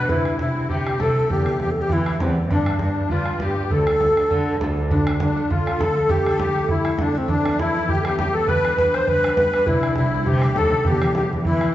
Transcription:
Already playing: harp G3 D4 E4 G4 B4, accordion B4, alto flute B4
0.09 cello C3, harp C3, alto flute E4, accordion E4, bodhran
0.18 bodhran
0.25 bodhran
0.39 cello C3, accordion E4, alto flute E4, bodhran
0.56 cello C3
0.69 cello C3, harp C4 E4 G4, accordion G4, alto flute G4, bodhran
0.87 bodhran
0.98 cello C3, harp C4 E4, accordion A4, alto flute A4, bodhran
1.03 harp G4
1.08 bodhran
1.29 cello E2, harp E3, accordion G4, alto flute G4, bodhran
1.38 bodhran
1.46 bodhran
1.60 cello E2, accordion G4, alto flute G4, bodhran
1.71 alto flute A4
1.76 cello E2, accordion G4
1.82 alto flute G4
1.89 cello E3, harp B3 E4 G4, accordion E4, alto flute E4, bodhran
2.06 bodhran
2.20 cello E2, harp B3 E4 G4, accordion C4, alto flute C4, bodhran
2.28 bodhran
2.50 cello G2, harp G3, accordion D4, alto flute D4, bodhran
2.58 bodhran
2.66 bodhran
2.79 cello G2, alto flute D4, accordion D4, bodhran
2.96 cello G2
3.09 cello G3, harp D4 G4 B4, accordion F4, alto flute F4, bodhran
3.26 bodhran
3.40 cello G2, harp D4 G4 B4, accordion G4, alto flute G4, bodhran
3.70 cello D2, harp D3, alto flute A4, accordion A4, bodhran
3.79 bodhran
3.87 bodhran
4.00 cello D2, bodhran
4.17 cello D2, bodhran
4.30 cello D3, harp D4 F4 A4, bodhran
4.60 cello D2, harp D4 F4 A4, bodhran
4.69 bodhran
4.89 harp D3, accordion D4, alto flute D4, bodhran
4.99 bodhran
5.07 harp A3, bodhran
5.20 harp D3, accordion D4, alto flute D4, bodhran
5.37 harp A3
5.50 harp D3, accordion F4, alto flute F4, bodhran
5.66 harp A3, bodhran
5.79 harp D3, accordion A4, alto flute A4, bodhran
5.89 bodhran
5.95 harp A3
6.09 harp A3, accordion G4, alto flute G4, bodhran
6.18 bodhran
6.26 harp A3, accordion A4, bodhran
6.38 harp A3, accordion G4, alto flute G4, bodhran
6.54 harp A3
6.68 harp A3, accordion E4, alto flute E4, bodhran
6.84 harp A3, bodhran
6.97 harp A3, accordion D4, bodhran
7.02 alto flute D4
7.08 bodhran
7.15 harp A3, accordion C4, alto flute C4
7.28 harp E3, accordion D4, alto flute D4, bodhran
7.38 bodhran
7.46 harp B3, accordion D4, bodhran
7.59 harp E3, alto flute E4, accordion E4, bodhran
7.76 harp B3
7.89 harp E3, accordion G4, alto flute G4, bodhran
8.01 alto flute A4, bodhran
8.05 harp B3, alto flute G4, accordion G4
8.18 harp E3, accordion G4, alto flute G4, bodhran
8.27 bodhran
8.33 harp B3, accordion A4, alto flute A4
8.47 harp G3, accordion B4, alto flute B4, bodhran
8.57 bodhran
8.65 harp D4, bodhran
8.77 harp G3, alto flute B4, accordion B4, bodhran
8.93 harp D4, accordion C5, alto flute C5, bodhran
9.07 harp G3, accordion B4, alto flute B4, bodhran
9.24 harp D4, bodhran
9.36 harp G3, accordion B4, alto flute B4, bodhran
9.45 bodhran
9.54 harp D4, bodhran
9.66 cello C2, harp C3, accordion E4, alto flute E4, bodhran
9.75 bodhran
9.83 harp G3, bodhran
9.95 cello C2, harp C3, accordion E4, alto flute E4, bodhran
10.13 cello C2, harp G3
10.26 cello C3, harp C3, accordion G4, alto flute G4, bodhran
10.42 harp G3, bodhran
10.55 cello D#2, harp C3, accordion A4, alto flute A4, bodhran
10.64 bodhran
10.74 harp G3
10.85 cello E2, harp E3, alto flute G4, accordion G4, bodhran
10.93 bodhran
11.02 harp E3, bodhran
11.15 cello E2, harp E3, accordion G4, alto flute G4, bodhran
11.32 cello E2, harp E3
11.45 cello E3, harp E3, alto flute E4, accordion E4, bodhran
11.61 harp E3, bodhran

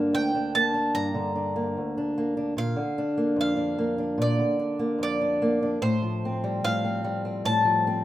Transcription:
Already playing: steel-string acoustic guitar G2 D3 A#3 D4, mandolin F5
0.13 steel-string acoustic guitar D2, mandolin G5
0.35 steel-string acoustic guitar D4
0.55 steel-string acoustic guitar A#3, mandolin A5
0.74 steel-string acoustic guitar D4
0.95 steel-string acoustic guitar G2, mandolin A#5
1.14 steel-string acoustic guitar D3
1.35 steel-string acoustic guitar D4
1.56 steel-string acoustic guitar A#3
1.77 steel-string acoustic guitar D2
1.98 steel-string acoustic guitar D4
2.18 steel-string acoustic guitar A#3
2.37 steel-string acoustic guitar D4
2.57 steel-string acoustic guitar A#2, mandolin F5
2.76 steel-string acoustic guitar D3
2.98 steel-string acoustic guitar D4
3.17 steel-string acoustic guitar A#3
3.36 steel-string acoustic guitar F2
3.41 mandolin F5
3.57 steel-string acoustic guitar D4
3.78 steel-string acoustic guitar A#3
3.98 steel-string acoustic guitar D4
4.18 steel-string acoustic guitar A#2
4.22 mandolin D5
4.39 steel-string acoustic guitar D3
4.59 steel-string acoustic guitar D4
4.79 steel-string acoustic guitar A#3
4.99 steel-string acoustic guitar F2
5.03 mandolin D5
5.21 steel-string acoustic guitar D4
5.42 steel-string acoustic guitar A#3
5.63 steel-string acoustic guitar D4
5.82 steel-string acoustic guitar A2, mandolin C5
6.02 steel-string acoustic guitar F3
6.25 steel-string acoustic guitar C4
6.44 steel-string acoustic guitar G3
6.64 steel-string acoustic guitar A2, mandolin F5
6.84 steel-string acoustic guitar C4
7.04 steel-string acoustic guitar G3
7.25 steel-string acoustic guitar C4
7.45 steel-string acoustic guitar A2, mandolin A5
7.65 steel-string acoustic guitar F3
7.87 steel-string acoustic guitar C4

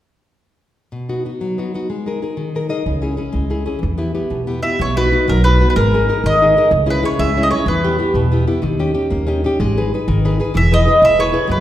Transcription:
0.92 nylon-string guitar B2
1.09 nylon-string guitar B3 D#4 F#4
1.25 nylon-string guitar B3 D#4 F#4
1.41 nylon-string guitar F#3
1.58 nylon-string guitar B3 D#4 F#4
1.74 nylon-string guitar B3 D#4 F#4
1.90 nylon-string guitar G#3
2.06 nylon-string guitar D#4 G#4 A#4
2.22 nylon-string guitar D#4 G#4 A#4
2.37 nylon-string guitar D#3
2.55 nylon-string guitar D#4 G#4 A#4
2.69 nylon-string guitar D#4 G#4 A#4 D#5
2.86 upright bass C#2, nylon-string guitar C#3
3.02 nylon-string guitar C#4 E4 G#4
3.17 nylon-string guitar C#4 E4 G#4
3.33 upright bass C#2, nylon-string guitar G#3
3.50 nylon-string guitar C#4 E4 G#4
3.66 nylon-string guitar C#4 E4 G#4
3.79 nylon-string guitar E3
3.83 upright bass E2
3.98 nylon-string guitar B3 E4 G4
4.15 nylon-string guitar B3 E4 G4
4.30 upright bass E2, nylon-string guitar B2
4.47 nylon-string guitar B3 E4 G4
4.63 nylon-string guitar B3 E4 G4, mandolin E5
4.79 upright bass B1, nylon-string guitar B2, mandolin C#5
4.96 nylon-string guitar B3 D#4 F#4, mandolin B4
5.12 nylon-string guitar B3 D#4 F#4
5.28 upright bass B1, nylon-string guitar F#3, mandolin A#4
5.44 nylon-string guitar B3 D#4 F#4, mandolin B4
5.61 nylon-string guitar B3 D#4 F#4
5.70 mandolin B4
5.76 upright bass G#1, nylon-string guitar G#3, mandolin A#4
5.94 nylon-string guitar D#4 G#4 A#4
6.09 nylon-string guitar D#4 G#4 A#4
6.24 upright bass G#1, nylon-string guitar D#3, mandolin D#5
6.42 nylon-string guitar D#4 G#4 A#4
6.57 nylon-string guitar D#4 G#4 A#4
6.71 upright bass C#2, nylon-string guitar C#3
6.86 nylon-string guitar C#4 E4 G#4
6.90 mandolin B4
7.03 nylon-string guitar C#4 E4 G#4, mandolin C#5
7.19 upright bass C#2, nylon-string guitar G#3, mandolin E5
7.37 nylon-string guitar C#4 E4 G#4
7.43 mandolin D#5
7.51 nylon-string guitar C#4 E4 G#4, mandolin C#5
7.66 upright bass E2, nylon-string guitar E3, mandolin B4
7.84 nylon-string guitar B3 E4 G4
7.99 nylon-string guitar B3 E4 G4
8.14 upright bass E2, nylon-string guitar B2
8.32 nylon-string guitar B3 E4 G4
8.47 nylon-string guitar B3 E4 G4
8.62 upright bass D#2, nylon-string guitar D#3
8.79 nylon-string guitar C#4 D#4 G4
8.94 nylon-string guitar C#4 D#4 G4
9.10 upright bass D#2, nylon-string guitar A#3
9.27 nylon-string guitar C#4 D#4 G4
9.44 nylon-string guitar C#4 D#4 G4
9.60 upright bass G#1, nylon-string guitar G#3
9.77 nylon-string guitar D#4 G#4 B4
9.94 nylon-string guitar D#4 G#4 B4
10.08 upright bass G#1, nylon-string guitar D#3
10.25 nylon-string guitar D#4 G#4 B4
10.40 nylon-string guitar D#4 G#4 B4
10.54 upright bass E1, nylon-string guitar E3, mandolin E5
10.71 nylon-string guitar E4 G#4 B4, mandolin D#5
10.87 nylon-string guitar E4 G#4 B4
11.02 upright bass E1, nylon-string guitar B2, mandolin E5
11.19 nylon-string guitar E4 G#4 B4, mandolin C#5
11.33 nylon-string guitar E4 G#4 B4
11.47 upright bass F#1, nylon-string guitar F#3
11.52 mandolin B4

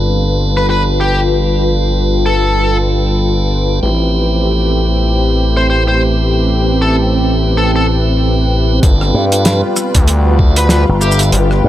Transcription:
Already playing: analog synth bass G1, analog synth pad G3 F4 B4, tonewheel organ D4 F4 A4 B4, ambient pad F4 B4 G5
0.57 lead electric guitar B4
0.70 lead electric guitar B4
1.01 lead electric guitar G4
2.26 lead electric guitar A4
3.83 analog synth bass A1, analog synth pad A3 C4 G4, ambient pad C4, tonewheel organ C4 E4 G4 B4
5.57 lead electric guitar C5
5.70 lead electric guitar C5
5.88 lead electric guitar C5
6.82 lead electric guitar A4
7.57 lead electric guitar A4
7.76 lead electric guitar A4
8.83 analog synth bass G1, analog synth pad G3 F4 B4, tonewheel organ D4 F4 A4 B4, ambient pad F4, kick, closed hi-hat
9.01 cross-stick
9.14 slap bass G2
9.32 tonewheel organ D4 F4 A4 B4, closed hi-hat
9.45 snare, closed hi-hat
9.76 cross-stick, shaker
9.95 analog synth bass D2, kick, closed hi-hat
10.08 closed hi-hat
10.39 tonewheel organ D4 F4 A4 E5, kick
10.56 lead electric guitar B4, closed hi-hat
10.69 lead electric guitar B4, snare, closed hi-hat
10.89 slap bass G1
11.01 tonewheel organ D4 F4 A4 E5, lead electric guitar G4, shaker
11.12 shaker
11.19 closed hi-hat, shaker
11.32 analog synth bass G1, closed hi-hat
11.51 cross-stick
11.64 slap bass G2

